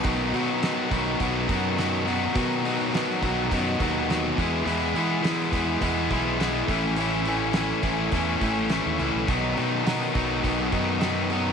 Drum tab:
HH |oooooooo|oooooooo|oooooooo|oooooooo|
SD |--o---o-|--o---o-|--o---o-|--o---o-|
BD |o--ooo--|o--ooo-o|---ooo-o|---ooo--|

HH |oooooooo|
SD |--o---o-|
BD |o--ooo--|